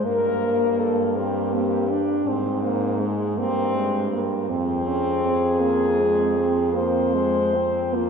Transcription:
0.05 G2 A#3 A#4
0.79 A4
1.16 A#3 C4 G4
1.54 A#3 C4
1.90 D4
2.26 G#2 C4
2.62 A#3
3.00 G#3
3.37 G2 A#3 C4
3.75 G#3
4.12 A#3
4.49 F2 C4 G#4
4.87 C#4
5.26 C4
5.61 A#3
5.98 G#3
6.37 C4
6.73 A#3 C4 C5
7.14 G#3
7.54 C4
7.94 A#3 F4

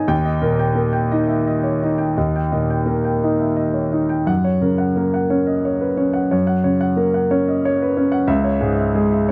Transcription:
Already playing: G#2 D#3 B3 D#4 B4 C#5 D#5 E5 G#5
0.08 D#2 G5
0.25 D#5
0.42 A#2 A#4
0.59 G5
0.74 A#3 A#4
0.93 G5
1.11 D#4 D#5
1.27 E5
1.47 D#5
1.64 C#5
1.83 D#4 D#5
1.98 G5
2.17 D#2 D#5
2.36 G5
2.52 A#2 D#5
2.70 G5
2.86 A#3 A#4
3.05 G5
3.23 D#4 D#5
3.40 E5
3.57 D#5
3.74 C#5
3.92 D#4 D#5
4.09 G5
4.26 F#2 F#5
4.44 C#5
4.62 C#3 A#4
4.78 F#5
4.96 A#3 A#4
5.14 F#5
5.30 C#4 C#5
5.47 D#5
5.65 C#5
5.81 B4
5.97 C#4 C#5
6.13 F#5
6.31 F#2 C#5
6.47 F#5
6.64 C#3 C#5
6.81 F#5
6.96 A#3 A#4
7.14 F#5
7.31 C#4 C#5
7.48 D#5
7.65 C#5
7.82 B4
7.97 C#4 C#5
8.12 F#5
8.27 C#2 E5
8.44 C#5
8.61 G#2 G#4
8.77 E5
8.95 G#3 G#4
9.12 E5
9.29 C#5

